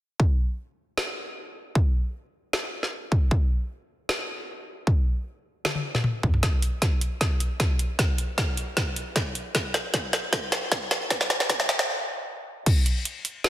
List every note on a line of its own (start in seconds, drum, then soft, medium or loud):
0.20 kick loud
0.98 snare loud
1.75 kick loud
2.53 snare loud
2.83 snare soft
3.12 kick loud
3.31 kick loud
4.09 snare loud
4.87 kick loud
5.65 snare loud
5.65 high tom medium
5.75 high tom medium
5.95 snare soft
5.95 mid tom medium
6.04 mid tom medium
6.23 kick loud
6.23 mid tom medium
6.34 mid tom medium
6.43 kick loud
6.43 snare soft
6.43 closed hi-hat medium
6.62 closed hi-hat medium
6.82 kick loud
6.82 snare soft
6.82 closed hi-hat medium
7.01 closed hi-hat medium
7.21 kick loud
7.21 snare medium
7.21 closed hi-hat medium
7.40 closed hi-hat medium
7.60 kick loud
7.60 snare medium
7.60 closed hi-hat medium
7.79 closed hi-hat medium
7.99 kick loud
7.99 snare medium
7.99 closed hi-hat medium
8.18 closed hi-hat medium
8.38 kick loud
8.38 snare medium
8.38 closed hi-hat medium
8.57 closed hi-hat medium
8.77 kick loud
8.77 snare medium
8.77 closed hi-hat medium
8.96 closed hi-hat medium
9.16 kick loud
9.16 snare medium
9.16 closed hi-hat medium
9.35 closed hi-hat medium
9.55 kick loud
9.55 snare medium
9.55 closed hi-hat medium
9.74 snare medium
9.74 closed hi-hat medium
9.94 kick loud
9.94 snare medium
9.94 closed hi-hat medium
10.13 snare medium
10.13 closed hi-hat medium
10.33 kick loud
10.33 snare medium
10.33 closed hi-hat medium
10.52 snare medium
10.52 closed hi-hat medium
10.72 kick loud
10.72 snare medium
10.72 closed hi-hat medium
10.91 snare medium
10.91 closed hi-hat medium
11.10 kick loud
11.10 snare medium
11.10 closed hi-hat medium
11.21 snare medium
11.30 snare medium
11.30 closed hi-hat medium
11.40 snare medium
11.49 kick loud
11.49 snare loud
11.49 closed hi-hat medium
11.60 snare medium
11.69 snare loud
11.69 closed hi-hat medium
11.79 snare medium
12.66 kick loud
12.66 closed hi-hat medium
12.66 crash loud
12.86 closed hi-hat medium
13.05 closed hi-hat medium
13.25 closed hi-hat medium
13.44 snare loud
13.44 closed hi-hat medium